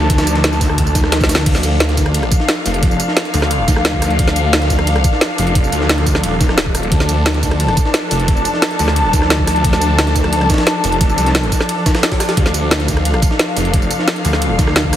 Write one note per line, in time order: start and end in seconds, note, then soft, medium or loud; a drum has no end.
0.00 1.42 F3 medium
0.00 1.42 D4 medium
0.00 1.42 A4 medium
0.00 1.44 A5 medium
0.10 1.45 D2 medium
0.10 kick loud
0.10 snare soft
0.10 closed hi-hat loud
0.10 ride medium
0.18 snare loud
0.18 ride medium
0.18 tambourine soft
0.27 closed hi-hat medium
0.27 tambourine medium
0.35 snare soft
0.35 ride medium
0.44 snare loud
0.44 closed hi-hat loud
0.44 ride medium
0.52 snare soft
0.52 tambourine soft
0.61 kick medium
0.61 snare soft
0.61 closed hi-hat medium
0.61 open hi-hat medium
0.61 tambourine medium
0.70 cross-stick soft
0.78 kick medium
0.78 closed hi-hat loud
0.78 ride medium
0.87 tambourine soft
0.95 kick loud
0.95 snare medium
0.95 closed hi-hat medium
0.95 ride medium
0.95 tambourine medium
1.04 cross-stick soft
1.04 snare soft
1.12 snare loud
1.12 snare medium
1.12 closed hi-hat loud
1.12 ride medium
1.21 kick loud
1.21 snare medium
1.21 tambourine soft
1.29 snare loud
1.29 open hi-hat medium
1.29 ride medium
1.29 tambourine medium
1.35 snare loud
1.38 snare loud
1.38 ride medium
1.46 1.96 D2 medium
1.46 14.96 F3 medium
1.46 14.96 D4 medium
1.46 14.96 A4 medium
1.46 6.89 F5 medium
1.46 kick loud
1.46 closed hi-hat loud
1.46 crash loud
1.46 ride medium
1.55 snare soft
1.55 ride soft
1.55 tambourine soft
1.63 closed hi-hat medium
1.63 ride medium
1.63 tambourine medium
1.80 snare loud
1.80 closed hi-hat loud
1.80 ride medium
1.89 snare medium
1.89 closed hi-hat soft
1.97 2.30 D2 loud
1.97 kick medium
1.97 snare medium
1.97 closed hi-hat medium
1.97 ride medium
1.97 tambourine medium
2.06 cross-stick soft
2.06 ride soft
2.14 closed hi-hat loud
2.14 ride medium
2.23 cross-stick soft
2.23 ride soft
2.31 kick loud
2.31 closed hi-hat medium
2.31 ride medium
2.31 tambourine medium
2.40 snare soft
2.48 snare loud
2.48 closed hi-hat loud
2.48 ride medium
2.66 2.98 F1 loud
2.66 snare soft
2.66 open hi-hat medium
2.66 ride medium
2.66 tambourine medium
2.74 closed hi-hat soft
2.83 kick loud
2.83 closed hi-hat loud
2.83 ride medium
2.91 tambourine soft
3.00 closed hi-hat medium
3.00 ride medium
3.00 tambourine medium
3.08 snare soft
3.17 snare loud
3.17 closed hi-hat loud
3.17 ride medium
3.25 snare soft
3.25 closed hi-hat soft
3.34 3.67 D2 loud
3.34 closed hi-hat medium
3.34 open hi-hat medium
3.34 tambourine medium
3.42 cross-stick soft
3.42 snare soft
3.51 closed hi-hat loud
3.51 ride medium
3.68 4.18 D2 loud
3.68 kick loud
3.68 snare medium
3.68 closed hi-hat medium
3.68 ride medium
3.68 tambourine medium
3.76 cross-stick medium
3.76 snare soft
3.85 snare loud
3.85 closed hi-hat loud
3.85 ride medium
3.93 kick medium
4.02 cross-stick soft
4.02 snare soft
4.02 open hi-hat medium
4.02 ride medium
4.02 tambourine medium
4.10 closed hi-hat soft
4.19 4.69 D2 loud
4.19 kick loud
4.19 closed hi-hat loud
4.19 ride loud
4.27 snare soft
4.27 ride soft
4.27 tambourine soft
4.36 closed hi-hat medium
4.36 ride medium
4.36 tambourine medium
4.53 snare loud
4.53 closed hi-hat medium
4.53 ride medium
4.62 snare medium
4.62 closed hi-hat soft
4.70 5.03 D2 medium
4.70 kick medium
4.70 snare soft
4.70 closed hi-hat medium
4.70 ride medium
4.70 tambourine medium
4.79 cross-stick soft
4.79 ride soft
4.87 closed hi-hat loud
4.87 ride medium
4.96 cross-stick soft
4.96 ride soft
5.04 kick loud
5.04 closed hi-hat medium
5.04 ride medium
5.04 tambourine medium
5.13 snare soft
5.21 snare loud
5.21 closed hi-hat medium
5.21 ride medium
5.38 5.71 F1 loud
5.38 snare soft
5.38 open hi-hat medium
5.38 ride medium
5.38 tambourine medium
5.47 closed hi-hat soft
5.55 kick loud
5.55 closed hi-hat medium
5.55 ride medium
5.64 tambourine soft
5.72 6.22 D2 loud
5.72 closed hi-hat medium
5.72 ride medium
5.72 tambourine medium
5.81 snare soft
5.89 snare loud
5.89 closed hi-hat medium
5.89 ride medium
5.98 snare soft
5.98 closed hi-hat soft
6.06 kick medium
6.06 closed hi-hat medium
6.06 open hi-hat medium
6.06 tambourine medium
6.15 cross-stick soft
6.15 snare soft
6.23 6.90 D#1 loud
6.23 closed hi-hat loud
6.23 ride medium
6.41 kick loud
6.41 snare medium
6.41 closed hi-hat medium
6.41 ride medium
6.41 tambourine medium
6.49 cross-stick soft
6.49 snare soft
6.58 snare loud
6.58 closed hi-hat medium
6.58 ride medium
6.66 kick medium
6.75 cross-stick soft
6.75 open hi-hat medium
6.75 ride medium
6.75 tambourine medium
6.83 closed hi-hat soft
6.92 7.41 D2 medium
6.92 12.35 A5 medium
6.92 kick loud
6.92 closed hi-hat loud
6.92 ride medium
7.00 snare soft
7.00 ride soft
7.00 tambourine soft
7.09 closed hi-hat medium
7.09 ride medium
7.09 tambourine medium
7.26 snare loud
7.26 closed hi-hat loud
7.26 ride medium
7.34 snare medium
7.34 closed hi-hat soft
7.43 7.76 D2 medium
7.43 kick medium
7.43 snare soft
7.43 closed hi-hat medium
7.43 ride medium
7.43 tambourine medium
7.51 cross-stick soft
7.51 ride soft
7.60 closed hi-hat medium
7.60 ride medium
7.68 cross-stick soft
7.68 ride soft
7.77 kick loud
7.77 closed hi-hat medium
7.77 ride medium
7.77 tambourine medium
7.85 snare soft
7.94 snare loud
7.94 closed hi-hat medium
7.94 ride medium
8.11 8.44 F1 loud
8.11 snare soft
8.11 open hi-hat medium
8.11 ride medium
8.11 tambourine medium
8.20 closed hi-hat soft
8.28 kick loud
8.28 closed hi-hat loud
8.28 ride medium
8.37 tambourine soft
8.45 closed hi-hat medium
8.45 ride medium
8.45 tambourine medium
8.54 snare soft
8.62 snare loud
8.62 closed hi-hat medium
8.62 ride medium
8.71 snare soft
8.71 closed hi-hat soft
8.79 9.12 D2 loud
8.79 closed hi-hat medium
8.79 open hi-hat medium
8.79 tambourine medium
8.88 cross-stick soft
8.88 snare soft
8.96 closed hi-hat loud
8.96 ride medium
9.13 9.63 D2 loud
9.13 kick loud
9.13 snare medium
9.13 closed hi-hat medium
9.13 ride medium
9.13 tambourine medium
9.22 cross-stick soft
9.22 snare medium
9.30 snare loud
9.30 closed hi-hat loud
9.30 ride medium
9.39 kick medium
9.47 cross-stick soft
9.47 snare soft
9.47 open hi-hat medium
9.47 ride medium
9.47 tambourine medium
9.56 closed hi-hat soft
9.64 10.14 D2 loud
9.64 kick loud
9.64 closed hi-hat loud
9.64 ride medium
9.73 snare soft
9.73 ride soft
9.73 tambourine soft
9.81 closed hi-hat medium
9.81 ride medium
9.81 tambourine medium
9.99 snare loud
9.99 closed hi-hat medium
9.99 ride medium
10.07 snare medium
10.07 closed hi-hat soft
10.16 10.48 D2 loud
10.16 kick medium
10.16 snare soft
10.16 closed hi-hat medium
10.16 ride medium
10.16 tambourine medium
10.24 cross-stick soft
10.24 ride soft
10.33 closed hi-hat loud
10.33 ride medium
10.41 cross-stick soft
10.41 ride soft
10.50 kick loud
10.50 snare medium
10.50 closed hi-hat medium
10.50 ride medium
10.50 tambourine medium
10.54 snare medium
10.54 ride medium
10.58 snare loud
10.58 ride medium
10.67 snare loud
10.67 closed hi-hat loud
10.67 ride medium
10.84 11.17 F1 loud
10.84 snare soft
10.84 open hi-hat medium
10.84 ride medium
10.84 tambourine medium
10.92 closed hi-hat soft
11.01 kick loud
11.01 closed hi-hat loud
11.01 ride medium
11.09 tambourine soft
11.18 11.51 C2 loud
11.18 closed hi-hat medium
11.18 ride medium
11.18 tambourine medium
11.26 snare soft
11.26 closed hi-hat soft
11.35 snare loud
11.35 closed hi-hat loud
11.35 ride medium
11.43 snare soft
11.43 closed hi-hat soft
11.52 kick medium
11.52 snare soft
11.52 closed hi-hat medium
11.52 open hi-hat medium
11.52 tambourine medium
11.61 cross-stick soft
11.61 snare soft
11.69 closed hi-hat loud
11.69 ride medium
11.86 kick loud
11.86 snare loud
11.86 closed hi-hat medium
11.86 ride medium
11.86 tambourine medium
11.95 cross-stick soft
11.95 snare loud
11.95 ride medium
12.03 snare loud
12.03 closed hi-hat loud
12.03 ride medium
12.12 kick medium
12.12 snare loud
12.12 ride medium
12.20 cross-stick soft
12.20 snare loud
12.20 open hi-hat medium
12.20 ride medium
12.20 tambourine medium
12.29 snare loud
12.29 closed hi-hat soft
12.29 ride medium
12.37 12.87 D2 loud
12.37 14.96 F5 medium
12.37 kick loud
12.37 closed hi-hat loud
12.37 ride medium
12.46 snare soft
12.46 ride soft
12.46 tambourine soft
12.54 closed hi-hat medium
12.54 ride medium
12.54 tambourine medium
12.71 snare loud
12.71 closed hi-hat loud
12.71 ride medium
12.80 snare medium
12.80 closed hi-hat soft
12.88 13.21 D2 loud
12.88 kick medium
12.88 snare medium
12.88 closed hi-hat medium
12.88 ride medium
12.88 tambourine medium
12.97 cross-stick medium
12.97 ride soft
13.05 closed hi-hat loud
13.05 ride medium
13.14 cross-stick soft
13.14 ride soft
13.22 kick loud
13.22 closed hi-hat medium
13.22 ride medium
13.22 tambourine medium
13.31 snare soft
13.39 snare loud
13.39 closed hi-hat loud
13.39 ride medium
13.56 13.89 F1 loud
13.56 snare soft
13.56 open hi-hat medium
13.56 ride medium
13.56 tambourine medium
13.65 closed hi-hat soft
13.74 kick loud
13.74 closed hi-hat loud
13.74 ride medium
13.82 tambourine soft
13.91 closed hi-hat medium
13.91 ride medium
13.91 tambourine medium
13.99 snare soft
14.08 snare loud
14.08 closed hi-hat loud
14.08 ride medium
14.16 snare soft
14.16 closed hi-hat soft
14.25 14.57 D2 loud
14.25 closed hi-hat medium
14.25 open hi-hat medium
14.25 tambourine medium
14.33 cross-stick medium
14.33 snare soft
14.42 closed hi-hat loud
14.42 ride medium
14.59 14.96 D2 medium
14.59 kick loud
14.59 snare medium
14.59 closed hi-hat medium
14.59 ride medium
14.59 tambourine medium
14.67 cross-stick medium
14.67 snare medium
14.76 snare loud
14.76 closed hi-hat loud
14.76 ride medium
14.84 kick medium
14.93 cross-stick medium
14.93 snare soft
14.93 open hi-hat medium
14.93 ride medium
14.93 tambourine medium